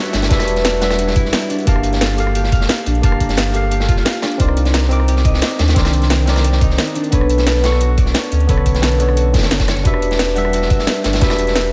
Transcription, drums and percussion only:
0.05 closed hi-hat soft
0.13 snare loud
0.13 closed hi-hat medium
0.22 snare loud
0.22 closed hi-hat soft
0.22 closed hi-hat medium
0.31 kick loud
0.31 snare loud
0.31 closed hi-hat medium
0.39 cross-stick medium
0.39 snare loud
0.39 closed hi-hat medium
0.48 closed hi-hat medium
0.56 snare medium
0.56 closed hi-hat soft
0.65 snare loud
0.65 closed hi-hat medium
0.81 snare medium
0.81 closed hi-hat medium
0.90 cross-stick soft
0.90 snare loud
0.90 closed hi-hat medium
0.99 closed hi-hat medium
1.08 snare medium
1.16 kick loud
1.16 closed hi-hat medium
1.25 snare soft
1.33 snare loud
1.33 closed hi-hat medium
1.42 closed hi-hat soft
1.50 closed hi-hat medium
1.59 closed hi-hat soft
1.67 kick loud
1.67 closed hi-hat medium
1.67 closed hi-hat loud
1.76 cross-stick medium
1.83 closed hi-hat medium
1.93 snare medium
1.93 closed hi-hat soft
2.01 snare loud
2.01 closed hi-hat medium
2.09 snare soft
2.18 closed hi-hat medium
2.27 cross-stick soft
2.35 closed hi-hat medium
2.44 snare soft
2.52 kick loud
2.52 closed hi-hat medium
2.61 snare medium
2.69 snare loud
2.69 closed hi-hat medium
2.78 closed hi-hat soft
2.86 closed hi-hat medium
2.95 closed hi-hat soft
3.03 kick loud
3.03 closed hi-hat medium
3.12 cross-stick medium
3.20 kick medium
3.20 closed hi-hat medium
3.29 snare medium
3.29 closed hi-hat soft
3.37 snare loud
3.37 closed hi-hat medium
3.54 closed hi-hat medium
3.71 closed hi-hat medium
3.80 snare medium
3.89 kick loud
3.89 closed hi-hat medium
3.97 snare soft
4.05 snare loud
4.05 closed hi-hat medium
4.14 closed hi-hat soft
4.22 cross-stick medium
4.22 snare loud
4.22 closed hi-hat medium
4.32 closed hi-hat soft
4.40 kick loud
4.40 closed hi-hat medium
4.40 closed hi-hat loud
4.48 cross-stick medium
4.57 closed hi-hat medium
4.65 snare medium
4.65 closed hi-hat soft
4.74 snare loud
4.74 closed hi-hat medium
4.82 snare soft
4.91 closed hi-hat medium
5.00 cross-stick soft
5.08 closed hi-hat medium
5.16 snare soft
5.25 kick loud
5.25 closed hi-hat medium
5.34 snare medium
5.42 snare loud
5.42 closed hi-hat medium
5.51 closed hi-hat soft
5.59 snare loud
5.59 closed hi-hat medium
5.68 snare loud
5.68 closed hi-hat soft
5.68 closed hi-hat medium
5.76 kick loud
5.76 snare loud
5.76 closed hi-hat medium
5.85 cross-stick medium
5.85 snare loud
5.85 closed hi-hat medium
5.93 closed hi-hat medium
6.02 snare medium
6.02 closed hi-hat soft
6.10 snare loud
6.10 closed hi-hat medium
6.27 snare loud
6.27 closed hi-hat medium
6.36 cross-stick soft
6.36 snare loud
6.36 closed hi-hat medium
6.44 closed hi-hat medium
6.52 snare medium
6.61 kick loud
6.61 closed hi-hat medium
6.71 snare soft
6.78 snare loud
6.78 closed hi-hat medium
6.87 closed hi-hat soft
6.96 closed hi-hat medium
7.04 closed hi-hat soft
7.12 kick loud
7.12 closed hi-hat medium
7.12 closed hi-hat loud
7.21 cross-stick medium
7.30 closed hi-hat medium
7.38 snare medium
7.38 closed hi-hat soft
7.47 snare loud
7.47 closed hi-hat loud
7.47 closed hi-hat medium
7.55 snare soft
7.64 snare loud
7.64 closed hi-hat medium
7.72 cross-stick soft
7.72 snare soft
7.81 closed hi-hat medium
7.98 kick loud
7.98 closed hi-hat medium
8.06 snare soft
8.14 snare loud
8.14 closed hi-hat medium
8.23 closed hi-hat soft
8.32 closed hi-hat medium
8.40 closed hi-hat soft
8.49 kick loud
8.49 closed hi-hat medium
8.57 cross-stick medium
8.66 kick medium
8.66 closed hi-hat medium
8.75 snare medium
8.75 closed hi-hat soft
8.82 snare loud
8.82 closed hi-hat medium
8.82 closed hi-hat loud
8.92 closed hi-hat soft
9.00 closed hi-hat medium
9.09 cross-stick soft
9.17 closed hi-hat medium
9.17 closed hi-hat loud
9.34 kick loud
9.34 snare medium
9.34 closed hi-hat medium
9.38 snare medium
9.38 closed hi-hat medium
9.43 snare loud
9.43 closed hi-hat medium
9.51 snare loud
9.51 closed hi-hat medium
9.60 kick medium
9.60 snare loud
9.60 closed hi-hat medium
9.60 closed hi-hat soft
9.68 cross-stick medium
9.68 snare loud
9.68 closed hi-hat medium
9.77 snare soft
9.77 closed hi-hat soft
9.85 kick loud
9.85 closed hi-hat loud
9.85 closed hi-hat medium
9.94 cross-stick medium
10.02 closed hi-hat medium
10.11 snare medium
10.11 closed hi-hat soft
10.19 snare loud
10.19 closed hi-hat loud
10.19 closed hi-hat medium
10.28 snare soft
10.36 closed hi-hat medium
10.45 cross-stick soft
10.53 closed hi-hat loud
10.53 closed hi-hat medium
10.62 snare soft
10.70 kick loud
10.70 closed hi-hat medium
10.79 snare medium
10.87 snare loud
10.87 closed hi-hat medium
10.95 closed hi-hat soft
11.04 snare loud
11.04 closed hi-hat medium
11.13 snare loud
11.13 closed hi-hat soft
11.13 closed hi-hat medium
11.21 kick loud
11.21 snare loud
11.21 closed hi-hat medium
11.30 cross-stick medium
11.30 snare loud
11.30 closed hi-hat medium
11.39 closed hi-hat medium
11.47 snare medium
11.47 closed hi-hat soft
11.56 snare loud
11.56 closed hi-hat medium

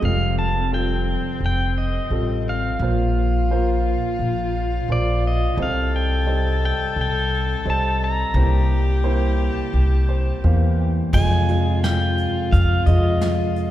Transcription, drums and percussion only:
11.13 kick medium
11.13 crash medium
11.48 closed hi-hat soft
11.83 snare medium
11.83 closed hi-hat medium
12.18 closed hi-hat soft
12.52 kick medium
12.52 closed hi-hat medium
12.86 closed hi-hat soft
13.21 snare medium
13.21 closed hi-hat medium
13.56 closed hi-hat soft

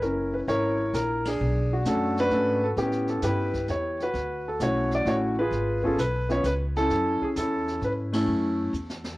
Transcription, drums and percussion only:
0.02 brush sweep soft
0.02 kick soft
0.02 snare soft
0.48 kick soft
0.48 snare soft
0.94 kick soft
0.94 snare medium
0.94 hi-hat pedal medium
1.25 snare medium
1.25 ride medium
1.40 brush sweep medium
1.85 kick soft
1.85 snare medium
1.85 hi-hat pedal medium
2.17 snare soft
2.30 kick soft
2.30 snare soft
2.77 brush sweep soft
2.77 kick soft
2.77 snare soft
2.92 snare soft
3.07 snare soft
3.22 kick soft
3.22 snare medium
3.22 hi-hat pedal medium
3.54 kick medium
3.54 snare soft
3.68 kick soft
3.68 snare soft
4.00 snare soft
4.14 brush sweep soft
4.14 kick soft
4.14 snare soft
4.60 kick soft
4.60 snare medium
4.60 hi-hat pedal medium
4.91 snare soft
5.06 kick soft
5.06 snare soft
5.52 brush sweep soft
5.52 kick soft
5.52 snare soft
5.83 kick soft
5.98 kick soft
5.98 snare medium
5.98 hi-hat pedal medium
6.29 snare soft
6.44 kick soft
6.44 snare medium
6.44 hi-hat pedal medium
6.76 snare soft
6.90 brush sweep soft
6.90 kick soft
6.90 snare soft
7.22 kick soft
7.36 kick soft
7.36 snare medium
7.36 hi-hat pedal medium
7.68 snare soft
7.82 kick soft
7.82 snare soft
8.13 snare medium
8.13 ride medium
8.27 brush sweep soft
8.74 hi-hat pedal soft
8.90 snare medium
9.04 snare medium

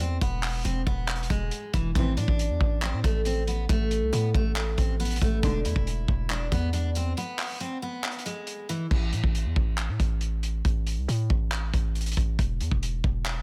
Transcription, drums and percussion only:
0.21 kick loud
0.21 closed hi-hat medium
0.43 clap loud
0.43 open hi-hat medium
0.65 closed hi-hat medium
0.87 kick loud
1.08 clap loud
1.08 closed hi-hat soft
1.16 closed hi-hat medium
1.23 closed hi-hat medium
1.30 kick loud
1.30 closed hi-hat medium
1.51 closed hi-hat medium
1.74 kick medium
1.74 closed hi-hat medium
1.95 kick loud
1.95 closed hi-hat medium
2.17 closed hi-hat medium
2.28 kick medium
2.39 closed hi-hat medium
2.61 kick loud
2.82 clap loud
2.82 closed hi-hat medium
3.04 kick loud
3.04 closed hi-hat medium
3.25 closed hi-hat medium
3.47 closed hi-hat medium
3.69 kick loud
3.69 closed hi-hat medium
3.91 closed hi-hat medium
4.13 closed hi-hat medium
4.34 kick loud
4.56 clap loud
4.56 closed hi-hat medium
4.78 kick loud
4.78 closed hi-hat medium
5.00 closed hi-hat medium
5.05 closed hi-hat medium
5.11 closed hi-hat medium
5.16 closed hi-hat medium
5.21 kick medium
5.21 closed hi-hat medium
5.43 kick loud
5.43 closed hi-hat medium
5.65 closed hi-hat medium
5.76 kick medium
5.87 closed hi-hat medium
6.08 kick loud
6.30 clap loud
6.30 closed hi-hat medium
6.52 kick loud
6.52 closed hi-hat medium
6.73 closed hi-hat medium
6.95 closed hi-hat medium
7.17 closed hi-hat medium
7.39 clap loud
7.39 open hi-hat medium
7.61 closed hi-hat medium
8.04 clap loud
8.04 closed hi-hat soft
8.11 closed hi-hat medium
8.19 closed hi-hat medium
8.26 closed hi-hat medium
8.47 closed hi-hat medium
8.69 closed hi-hat medium
8.91 kick loud
8.91 crash medium
9.13 closed hi-hat medium
9.24 kick medium
9.35 closed hi-hat medium
9.56 kick loud
9.78 clap loud
9.78 closed hi-hat medium
10.00 kick medium
10.00 closed hi-hat medium
10.21 closed hi-hat medium
10.43 closed hi-hat medium
10.65 kick loud
10.65 closed hi-hat medium
10.87 closed hi-hat medium
11.09 closed hi-hat medium
11.30 kick loud
11.52 clap loud
11.52 closed hi-hat medium
11.74 kick medium
11.74 closed hi-hat medium
11.95 closed hi-hat soft
12.01 closed hi-hat medium
12.06 closed hi-hat medium
12.12 closed hi-hat medium
12.17 kick medium
12.17 closed hi-hat medium
12.39 kick loud
12.39 closed hi-hat medium
12.61 closed hi-hat medium
12.71 kick medium
12.83 closed hi-hat medium
13.04 kick loud
13.26 clap loud
13.26 closed hi-hat medium

